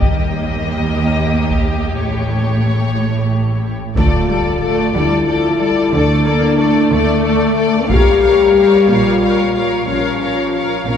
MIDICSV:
0, 0, Header, 1, 9, 480
1, 0, Start_track
1, 0, Tempo, 655738
1, 24, Time_signature, 6, 3, 24, 8
1, 8032, End_track
2, 0, Start_track
2, 0, Title_t, "Violin section"
2, 0, Program_c, 0, 48
2, 19, Note_on_c, 0, 75, 46
2, 1433, Note_off_c, 0, 75, 0
2, 1457, Note_on_c, 0, 73, 37
2, 2725, Note_off_c, 0, 73, 0
2, 2897, Note_on_c, 0, 74, 41
2, 3136, Note_off_c, 0, 74, 0
2, 3146, Note_on_c, 0, 74, 34
2, 3373, Note_off_c, 0, 74, 0
2, 3382, Note_on_c, 0, 74, 40
2, 3603, Note_off_c, 0, 74, 0
2, 3612, Note_on_c, 0, 74, 44
2, 3851, Note_off_c, 0, 74, 0
2, 3860, Note_on_c, 0, 74, 37
2, 4097, Note_off_c, 0, 74, 0
2, 4105, Note_on_c, 0, 74, 45
2, 4336, Note_off_c, 0, 74, 0
2, 4344, Note_on_c, 0, 74, 50
2, 4573, Note_off_c, 0, 74, 0
2, 4582, Note_on_c, 0, 74, 44
2, 4806, Note_off_c, 0, 74, 0
2, 4814, Note_on_c, 0, 74, 47
2, 5054, Note_off_c, 0, 74, 0
2, 5063, Note_on_c, 0, 74, 52
2, 5289, Note_off_c, 0, 74, 0
2, 5298, Note_on_c, 0, 74, 45
2, 5525, Note_off_c, 0, 74, 0
2, 5534, Note_on_c, 0, 74, 50
2, 5770, Note_on_c, 0, 77, 52
2, 5774, Note_off_c, 0, 74, 0
2, 6009, Note_off_c, 0, 77, 0
2, 6017, Note_on_c, 0, 77, 43
2, 6252, Note_off_c, 0, 77, 0
2, 6260, Note_on_c, 0, 77, 42
2, 6491, Note_off_c, 0, 77, 0
2, 6500, Note_on_c, 0, 77, 45
2, 6737, Note_off_c, 0, 77, 0
2, 6749, Note_on_c, 0, 77, 38
2, 6982, Note_off_c, 0, 77, 0
2, 6993, Note_on_c, 0, 77, 39
2, 7219, Note_off_c, 0, 77, 0
2, 7228, Note_on_c, 0, 77, 37
2, 7461, Note_off_c, 0, 77, 0
2, 7472, Note_on_c, 0, 77, 32
2, 7703, Note_off_c, 0, 77, 0
2, 7712, Note_on_c, 0, 77, 33
2, 7944, Note_off_c, 0, 77, 0
2, 7953, Note_on_c, 0, 77, 35
2, 8032, Note_off_c, 0, 77, 0
2, 8032, End_track
3, 0, Start_track
3, 0, Title_t, "Violin section"
3, 0, Program_c, 1, 48
3, 14, Note_on_c, 1, 67, 46
3, 2723, Note_off_c, 1, 67, 0
3, 2907, Note_on_c, 1, 69, 40
3, 2909, Note_off_c, 1, 69, 0
3, 2909, Note_on_c, 1, 69, 40
3, 3138, Note_off_c, 1, 69, 0
3, 3147, Note_on_c, 1, 69, 36
3, 3151, Note_off_c, 1, 69, 0
3, 3151, Note_on_c, 1, 69, 40
3, 3372, Note_off_c, 1, 69, 0
3, 3381, Note_on_c, 1, 69, 36
3, 3385, Note_off_c, 1, 69, 0
3, 3385, Note_on_c, 1, 69, 40
3, 3620, Note_off_c, 1, 69, 0
3, 3630, Note_on_c, 1, 69, 45
3, 3631, Note_off_c, 1, 69, 0
3, 3631, Note_on_c, 1, 69, 44
3, 3859, Note_off_c, 1, 69, 0
3, 3868, Note_on_c, 1, 69, 42
3, 3872, Note_off_c, 1, 69, 0
3, 3872, Note_on_c, 1, 69, 42
3, 4080, Note_off_c, 1, 69, 0
3, 4089, Note_on_c, 1, 69, 45
3, 4091, Note_off_c, 1, 69, 0
3, 4091, Note_on_c, 1, 69, 45
3, 4333, Note_off_c, 1, 69, 0
3, 4346, Note_on_c, 1, 69, 52
3, 4348, Note_off_c, 1, 69, 0
3, 4348, Note_on_c, 1, 69, 54
3, 4564, Note_off_c, 1, 69, 0
3, 4573, Note_on_c, 1, 69, 48
3, 4576, Note_off_c, 1, 69, 0
3, 4576, Note_on_c, 1, 69, 49
3, 4815, Note_off_c, 1, 69, 0
3, 4829, Note_on_c, 1, 69, 47
3, 4830, Note_off_c, 1, 69, 0
3, 4830, Note_on_c, 1, 69, 49
3, 5057, Note_off_c, 1, 69, 0
3, 5066, Note_on_c, 1, 69, 55
3, 5296, Note_off_c, 1, 69, 0
3, 5304, Note_on_c, 1, 69, 53
3, 5309, Note_off_c, 1, 69, 0
3, 5309, Note_on_c, 1, 69, 52
3, 5542, Note_off_c, 1, 69, 0
3, 5549, Note_on_c, 1, 69, 50
3, 5552, Note_off_c, 1, 69, 0
3, 5552, Note_on_c, 1, 69, 49
3, 5783, Note_off_c, 1, 69, 0
3, 5788, Note_on_c, 1, 70, 51
3, 5793, Note_on_c, 1, 73, 51
3, 6022, Note_off_c, 1, 70, 0
3, 6024, Note_off_c, 1, 73, 0
3, 6044, Note_on_c, 1, 70, 48
3, 6046, Note_on_c, 1, 73, 48
3, 6270, Note_off_c, 1, 70, 0
3, 6271, Note_off_c, 1, 73, 0
3, 6295, Note_on_c, 1, 70, 42
3, 6299, Note_on_c, 1, 73, 45
3, 6515, Note_off_c, 1, 70, 0
3, 6517, Note_off_c, 1, 73, 0
3, 6527, Note_on_c, 1, 73, 45
3, 6533, Note_on_c, 1, 70, 42
3, 6751, Note_off_c, 1, 73, 0
3, 6754, Note_off_c, 1, 70, 0
3, 6767, Note_on_c, 1, 70, 41
3, 6771, Note_on_c, 1, 73, 42
3, 6991, Note_off_c, 1, 70, 0
3, 6993, Note_off_c, 1, 73, 0
3, 7013, Note_on_c, 1, 73, 37
3, 7015, Note_on_c, 1, 70, 35
3, 7234, Note_off_c, 1, 73, 0
3, 7235, Note_off_c, 1, 70, 0
3, 7249, Note_on_c, 1, 70, 38
3, 7249, Note_on_c, 1, 73, 41
3, 7472, Note_off_c, 1, 70, 0
3, 7472, Note_off_c, 1, 73, 0
3, 7486, Note_on_c, 1, 73, 36
3, 7487, Note_on_c, 1, 70, 34
3, 7711, Note_off_c, 1, 70, 0
3, 7711, Note_off_c, 1, 73, 0
3, 7720, Note_on_c, 1, 73, 34
3, 7722, Note_on_c, 1, 70, 33
3, 7947, Note_off_c, 1, 73, 0
3, 7949, Note_off_c, 1, 70, 0
3, 7966, Note_on_c, 1, 70, 38
3, 7966, Note_on_c, 1, 73, 34
3, 8032, Note_off_c, 1, 70, 0
3, 8032, Note_off_c, 1, 73, 0
3, 8032, End_track
4, 0, Start_track
4, 0, Title_t, "French horn section"
4, 0, Program_c, 2, 60
4, 2903, Note_on_c, 2, 65, 61
4, 3595, Note_off_c, 2, 65, 0
4, 3623, Note_on_c, 2, 64, 68
4, 4329, Note_off_c, 2, 64, 0
4, 4344, Note_on_c, 2, 62, 76
4, 5061, Note_on_c, 2, 57, 78
4, 5064, Note_off_c, 2, 62, 0
4, 5768, Note_off_c, 2, 57, 0
4, 5783, Note_on_c, 2, 67, 93
4, 6502, Note_on_c, 2, 65, 69
4, 6504, Note_off_c, 2, 67, 0
4, 7216, Note_on_c, 2, 61, 56
4, 7223, Note_off_c, 2, 65, 0
4, 7926, Note_off_c, 2, 61, 0
4, 8032, End_track
5, 0, Start_track
5, 0, Title_t, "Viola section"
5, 0, Program_c, 3, 48
5, 20, Note_on_c, 3, 58, 44
5, 1433, Note_off_c, 3, 58, 0
5, 1465, Note_on_c, 3, 57, 33
5, 2729, Note_off_c, 3, 57, 0
5, 2900, Note_on_c, 3, 57, 41
5, 3125, Note_off_c, 3, 57, 0
5, 3139, Note_on_c, 3, 55, 42
5, 3382, Note_off_c, 3, 55, 0
5, 3384, Note_on_c, 3, 57, 49
5, 3619, Note_off_c, 3, 57, 0
5, 3620, Note_on_c, 3, 55, 44
5, 3857, Note_off_c, 3, 55, 0
5, 3865, Note_on_c, 3, 53, 45
5, 4099, Note_on_c, 3, 55, 44
5, 4100, Note_off_c, 3, 53, 0
5, 4342, Note_off_c, 3, 55, 0
5, 4350, Note_on_c, 3, 57, 53
5, 4575, Note_on_c, 3, 58, 62
5, 4587, Note_off_c, 3, 57, 0
5, 4817, Note_on_c, 3, 57, 69
5, 4820, Note_off_c, 3, 58, 0
5, 5781, Note_off_c, 3, 57, 0
5, 5786, Note_on_c, 3, 55, 59
5, 7225, Note_off_c, 3, 55, 0
5, 7233, Note_on_c, 3, 53, 37
5, 8032, Note_off_c, 3, 53, 0
5, 8032, End_track
6, 0, Start_track
6, 0, Title_t, "Cello section"
6, 0, Program_c, 4, 48
6, 16, Note_on_c, 4, 39, 44
6, 1460, Note_off_c, 4, 39, 0
6, 1467, Note_on_c, 4, 45, 33
6, 2733, Note_off_c, 4, 45, 0
6, 2908, Note_on_c, 4, 50, 45
6, 3525, Note_off_c, 4, 50, 0
6, 3628, Note_on_c, 4, 50, 58
6, 4245, Note_off_c, 4, 50, 0
6, 4348, Note_on_c, 4, 50, 61
6, 4965, Note_off_c, 4, 50, 0
6, 5063, Note_on_c, 4, 50, 63
6, 5682, Note_off_c, 4, 50, 0
6, 5789, Note_on_c, 4, 46, 62
6, 6405, Note_off_c, 4, 46, 0
6, 6505, Note_on_c, 4, 46, 59
6, 7123, Note_off_c, 4, 46, 0
6, 7226, Note_on_c, 4, 46, 47
6, 7844, Note_off_c, 4, 46, 0
6, 7952, Note_on_c, 4, 46, 43
6, 8032, Note_off_c, 4, 46, 0
6, 8032, End_track
7, 0, Start_track
7, 0, Title_t, "Double bass section"
7, 0, Program_c, 5, 48
7, 18, Note_on_c, 5, 39, 47
7, 1461, Note_off_c, 5, 39, 0
7, 1464, Note_on_c, 5, 33, 35
7, 2732, Note_off_c, 5, 33, 0
7, 2908, Note_on_c, 5, 38, 50
7, 3525, Note_off_c, 5, 38, 0
7, 3624, Note_on_c, 5, 38, 52
7, 4243, Note_off_c, 5, 38, 0
7, 4339, Note_on_c, 5, 38, 56
7, 4960, Note_off_c, 5, 38, 0
7, 5064, Note_on_c, 5, 38, 61
7, 5683, Note_off_c, 5, 38, 0
7, 5784, Note_on_c, 5, 34, 64
7, 6403, Note_off_c, 5, 34, 0
7, 6513, Note_on_c, 5, 34, 54
7, 7127, Note_off_c, 5, 34, 0
7, 7228, Note_on_c, 5, 34, 48
7, 7845, Note_off_c, 5, 34, 0
7, 7950, Note_on_c, 5, 34, 42
7, 8032, Note_off_c, 5, 34, 0
7, 8032, End_track
8, 0, Start_track
8, 0, Title_t, "Impact"
8, 0, Program_c, 6, 103
8, 2909, Note_on_c, 6, 60, 43
8, 4347, Note_off_c, 6, 60, 0
8, 8032, End_track
9, 0, Start_track
9, 0, Title_t, "Taiko and cinematic ensemble drums"
9, 15, Note_on_c, 9, 41, 43
9, 88, Note_off_c, 9, 41, 0
9, 1096, Note_on_c, 9, 41, 29
9, 1170, Note_off_c, 9, 41, 0
9, 2901, Note_on_c, 9, 41, 48
9, 2974, Note_off_c, 9, 41, 0
9, 5783, Note_on_c, 9, 41, 54
9, 5856, Note_off_c, 9, 41, 0
9, 8032, End_track
0, 0, End_of_file